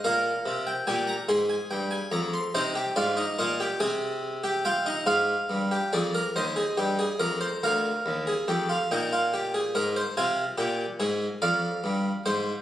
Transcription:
<<
  \new Staff \with { instrumentName = "Harpsichord" } { \time 6/8 \key f \minor \tempo 4. = 48 << { f''8. g''16 aes''16 bes''16 c'''16 aes''16 g''16 aes''16 bes''16 c'''16 | c''8 d''8 ees''8 aes''4 g''8 | f''4 d''8 ees''4. | f''4. g''4. |
aes''4. f''4. | } \\ { bes'4 g'8 aes'4. | ees'16 g'16 f'16 ees'16 f'16 g'16 aes'8. g'16 f'16 ees'16 | f'8. g'16 aes'16 bes'16 c''16 aes'16 g'16 aes'16 bes'16 c''16 | bes'8. aes'16 g'16 f'16 ees'16 f'16 g'16 aes'16 bes'16 c''16 |
f'8 g'8 aes'8 d''4 c''8 | } >> }
  \new Staff \with { instrumentName = "Harpsichord" } { \clef bass \time 6/8 \key f \minor bes,8 c8 bes,8 aes,8 g,8 f,8 | c8 aes,8 bes,8 c4. | aes,8 g,8 f,8 ees,8 g,8 f,8 | d,8 ees,8 f,8 bes,4 aes,8 |
c8 bes,8 aes,8 f,8 g,8 aes,8 | }
>>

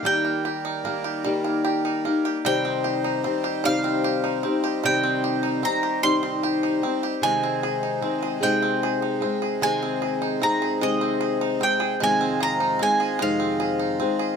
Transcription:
<<
  \new Staff \with { instrumentName = "Mandolin" } { \time 6/8 \key c \minor \tempo 4. = 50 g''2~ g''8 r8 | g''4. f''4. | g''4 bes''8 c'''4 r8 | aes''4. g''4. |
aes''4 bes''8 ees''4 g''8 | aes''8 bes''8 aes''8 f''4. | }
  \new Staff \with { instrumentName = "Accordion" } { \time 6/8 \key c \minor << { bes'2. | c''2.~ | c''2.~ | c''2.~ |
c''2. | ees''2. | } \\ { d''2. | ees'2.~ | ees'2. | <c ees'>2.~ |
<c ees'>2. | f'2. | } >> }
  \new Staff \with { instrumentName = "Accordion" } { \clef bass \time 6/8 \key c \minor g2. | g2.~ | g2. | aes2.~ |
aes2.~ | aes2. | }
  \new Staff \with { instrumentName = "Five-string banjo" } { \time 6/8 \key c \minor <g bes ees' g'>16 bes16 g'16 ees'16 bes16 g'16 g16 bes16 g'16 ees'16 bes16 g'16 | g16 c'16 g'16 ees'16 c'16 g'16 g16 c'16 g'16 ees'16 c'16 g'16 | g16 c'16 g'16 ees'16 c'16 g'16 g16 c'16 g'16 ees'16 c'16 g'16 | aes16 c'16 aes'16 ees'16 c'16 aes'16 aes16 c'16 aes'16 ees'16 c'16 aes'16 |
aes16 c'16 aes'16 ees'16 c'16 aes'16 aes16 c'16 aes'16 ees'16 c'16 aes'16 | aes16 c'16 aes'16 ees'16 c'16 aes'16 aes16 c'16 aes'16 ees'16 c'16 aes'16 | }
  \new Staff \with { instrumentName = "Steel-string acoustic guitar" } { \time 6/8 \key c \minor <ees bes ees' g'>4 <ees bes ees' g'>8 <ees bes ees' g'>4 <bes ees' g'>8 | <c ees c' ees' g'>4 <ees c' ees' g'>8 <c ees c' ees' g'>4 <c' ees' g'>8 | <c ees c' ees' g'>4 <ees c' ees' g'>8 <c ees c' ees' g'>4 <c' ees' g'>8 | <c ees aes c' aes'>4 <ees aes c' aes'>8 <c ees aes c' aes'>4 <aes c' aes'>8 |
<c ees aes c' aes'>4 <ees aes c' aes'>8 <c ees aes c' aes'>4 <aes c' aes'>8 | <f, c ees aes c' aes'>4 <ees aes c' aes'>8 <f, c ees aes c' aes'>4 <ees aes c' aes'>8 | }
>>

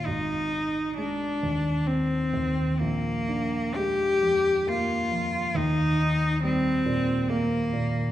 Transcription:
<<
  \new Staff \with { instrumentName = "Cello" } { \time 3/4 \key ees \major \tempo 4 = 67 ees'4 d'4 c'4 | bes4 g'4 f'4 | ees'4 c'4 bes4 | }
  \new Staff \with { instrumentName = "Grand piano" } { \clef bass \time 3/4 \key ees \major aes,,8 ees'8 aes8 ees,8 c'8 ees,8 | bes,,8 d'8 aes8 f,8 bes8 f,8 | ees,8 ees'8 g8 bes,8 bes8 bes,8 | }
>>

